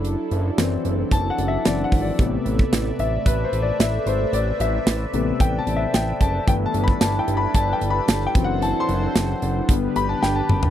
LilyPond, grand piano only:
<<
  \new Staff \with { instrumentName = "Grand piano" } { \time 4/4 \key a \dorian \tempo 4 = 112 r2 \tuplet 3/2 { a''8 fis''8 e''8 d''8 fis''8 d''8~ } | d''16 r4 r16 e''8 \tuplet 3/2 { b'8 c''8 d''8 } e''8 c''8 | d''8 e''4. \tuplet 3/2 { g''8 a''8 e''8 } g''8 a''8 | \tuplet 3/2 { g''8 a''8 b''8 a''8 g''8 b''8 a''8 g''8 b''8 a''8 g''8 fis''8 } |
\tuplet 3/2 { a''8 c'''4~ } c'''8. r8. b''16 a''16 g''16 a''8. | }
  \new Staff \with { instrumentName = "Grand piano" } { \clef bass \time 4/4 \key a \dorian r4 <e fis c'>2 <e fis c'>8 r8 | <c a b>4. r2 r8 | r4. <c a b>2~ <c a b>8 | <e a b>8 r2. <e fis c'>8 |
r2 <d g b>8 r4. | }
>>